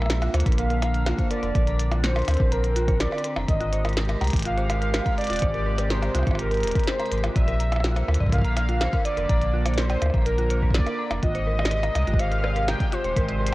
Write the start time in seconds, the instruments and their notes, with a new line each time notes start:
Already playing: sub bass A#1, ambient pad D3 A#3, soft synth lead E5
0.02 percussion blips
0.06 percussion blips
0.10 snare, closed hi-hat
0.22 synth bell F4, closed hi-hat, percussion blips
0.34 sub bass D2, synth bell C5, closed hi-hat, percussion blips
0.40 closed hi-hat
0.46 sub bass A#1, synth bell A#4, kick, closed hi-hat
0.52 closed hi-hat
0.58 synth bell A#4, soft synth lead F5, closed hi-hat
0.70 synth bell A#4, closed hi-hat
0.82 synth bell A#5, closed hi-hat, percussion blips
0.95 closed hi-hat
1.07 synth bell F4, snare, closed hi-hat, percussion blips
1.19 synth bell C5, kick, closed hi-hat
1.31 synth bell A#4, soft synth lead D5, closed hi-hat
1.43 sub bass F1, synth bell A#4, closed hi-hat
1.55 sub bass A#1, ambient pad C4, synth bell A#4, kick, closed hi-hat
1.67 synth bell A#5, closed hi-hat
1.79 closed hi-hat
1.91 synth bell F4, closed hi-hat, percussion blips
2.03 synth bell C5, soft synth lead C5, snare, closed hi-hat
2.16 synth bell A#4, closed hi-hat, percussion blips
2.19 closed hi-hat
2.22 closed hi-hat
2.25 sub bass D2, closed hi-hat
2.28 synth bell A#4, closed hi-hat, percussion blips
2.31 closed hi-hat
2.34 closed hi-hat
2.37 sub bass A#1, synth bell A#4, kick, closed hi-hat
2.52 soft synth lead A#4, synth bell A#5, closed hi-hat
2.64 closed hi-hat
2.76 synth bell F4, closed hi-hat
2.88 synth bell C5, kick, closed hi-hat
3.00 synth bell A#4, soft synth lead D5, snare, closed hi-hat
3.12 synth bell A#4, percussion blips
3.18 closed hi-hat
3.24 synth bell A#4, closed hi-hat
3.36 sub bass F1, synth bell A#5, percussion blips
3.49 sub bass G#1, ambient pad C3 G#3 G4, soft synth lead D#5, kick, closed hi-hat
3.61 synth bell F4, closed hi-hat
3.73 synth bell C5, closed hi-hat
3.85 synth bell A#4, closed hi-hat, percussion blips
3.89 closed hi-hat
3.93 synth bell A#4, snare, closed hi-hat
3.97 closed hi-hat
4.05 synth bell A#4, closed hi-hat
4.09 closed hi-hat, percussion blips
4.21 sub bass C2, synth bell A#5, closed hi-hat, percussion blips
4.24 closed hi-hat
4.27 closed hi-hat
4.30 sub bass G#1, kick, closed hi-hat
4.33 closed hi-hat
4.36 closed hi-hat
4.39 closed hi-hat
4.42 closed hi-hat
4.45 synth bell F4, soft synth lead F5, closed hi-hat
4.57 synth bell C5, closed hi-hat
4.69 synth bell A#4, closed hi-hat, percussion blips
4.82 synth bell A#4, closed hi-hat
4.94 synth bell A#4, snare, closed hi-hat, percussion blips
5.06 synth bell A#5, kick, closed hi-hat
5.18 soft synth lead D5, closed hi-hat
5.21 closed hi-hat
5.24 closed hi-hat
5.27 sub bass D#1, synth bell F4, closed hi-hat
5.30 closed hi-hat
5.33 closed hi-hat
5.36 closed hi-hat
5.39 sub bass G#1, synth bell C5, kick, closed hi-hat
5.42 closed hi-hat
5.54 synth bell A#4, closed hi-hat
5.66 synth bell A#4
5.78 synth bell A#4, closed hi-hat, percussion blips
5.90 soft synth lead C5, synth bell A#5, snare, closed hi-hat
6.03 closed hi-hat, percussion blips
6.15 sub bass C2, synth bell F4, closed hi-hat, percussion blips
6.19 percussion blips
6.23 percussion blips
6.27 sub bass G#1, synth bell C5, kick, closed hi-hat, percussion blips
6.31 percussion blips
6.35 synth bell A#4, percussion blips
6.39 soft synth lead A#4, closed hi-hat
6.51 synth bell A#4, closed hi-hat
6.54 closed hi-hat
6.57 closed hi-hat
6.60 closed hi-hat
6.63 sub bass D#1, closed hi-hat
6.67 closed hi-hat
6.71 synth bell A#4, kick, closed hi-hat
6.75 closed hi-hat
6.79 closed hi-hat
6.83 synth bell A#4, snare, closed hi-hat
6.87 soft synth lead C5, closed hi-hat
6.99 synth bell A#5, closed hi-hat, percussion blips
7.05 closed hi-hat
7.11 sub bass G#1, synth bell A#4, closed hi-hat
7.18 closed hi-hat
7.24 synth bell F4, closed hi-hat, percussion blips
7.36 sub bass A#1, ambient pad D3 A#3, synth bell D5, soft synth lead E5, kick, closed hi-hat
7.48 synth bell A#4, closed hi-hat
7.60 synth bell A#5, closed hi-hat
7.72 closed hi-hat, percussion blips
7.76 percussion blips
7.80 synth bell F4, percussion blips
7.84 snare, closed hi-hat, percussion blips
7.88 percussion blips
7.92 synth bell C5, percussion blips
7.96 closed hi-hat, percussion blips
8.08 sub bass D2, synth bell A#4, percussion blips
8.14 closed hi-hat
8.20 sub bass A#1, synth bell D5, kick
8.23 kick
8.26 kick
8.29 kick
8.32 synth bell A#4, soft synth lead F5, kick, closed hi-hat
8.36 kick
8.39 kick
8.42 synth bell A#5, kick, closed hi-hat
8.57 closed hi-hat, percussion blips
8.69 synth bell F4, closed hi-hat
8.81 synth bell C5, snare, closed hi-hat, percussion blips
8.93 synth bell A#4, kick, closed hi-hat
9.05 soft synth lead D5, synth bell D5, closed hi-hat
9.17 sub bass F1, synth bell A#4, closed hi-hat
9.29 sub bass A#1, synth bell A#5, kick, closed hi-hat
9.41 closed hi-hat
9.54 synth bell F4
9.66 synth bell C5, closed hi-hat, percussion blips
9.74 synth bell A#4, soft synth lead C5, closed hi-hat
9.78 snare, closed hi-hat
9.82 closed hi-hat
9.90 synth bell D5, closed hi-hat, percussion blips
10.02 sub bass D2, synth bell A#4, closed hi-hat, percussion blips
10.06 percussion blips
10.10 percussion blips
10.14 sub bass A#1, synth bell A#5, kick, closed hi-hat, percussion blips
10.18 percussion blips
10.22 soft synth lead A#4, percussion blips
10.26 closed hi-hat
10.38 synth bell F4, closed hi-hat
10.50 synth bell C5, closed hi-hat
10.62 synth bell A#4, kick
10.70 synth bell D5, kick, snare, closed hi-hat
10.74 soft synth lead D5
10.78 kick
10.86 synth bell A#4, closed hi-hat, percussion blips
10.99 synth bell A#5
11.11 sub bass F1, closed hi-hat, percussion blips
11.23 sub bass G#1, ambient pad C3 G#3 G4, synth bell F4, soft synth lead D#5, kick, closed hi-hat
11.35 synth bell C5, closed hi-hat
11.47 synth bell A#4
11.59 synth bell D5, percussion blips
11.65 snare
11.71 synth bell A#4, closed hi-hat
11.83 synth bell A#5, closed hi-hat, percussion blips
11.95 sub bass C2, closed hi-hat, percussion blips
12.07 sub bass G#1, synth bell F4, closed hi-hat
12.14 kick
12.19 synth bell C5, soft synth lead F5, closed hi-hat
12.32 synth bell A#4, closed hi-hat
12.44 synth bell D5, percussion blips
12.56 synth bell A#4, closed hi-hat
12.68 soft synth lead G5, synth bell A#5, snare, closed hi-hat, percussion blips
12.80 kick, closed hi-hat
12.92 synth bell F4, soft synth lead C5, closed hi-hat
13.04 sub bass D#1, synth bell C5, closed hi-hat
13.16 sub bass G#1, synth bell A#4, kick, closed hi-hat
13.29 synth bell D5, closed hi-hat
13.41 synth bell A#4
13.47 closed hi-hat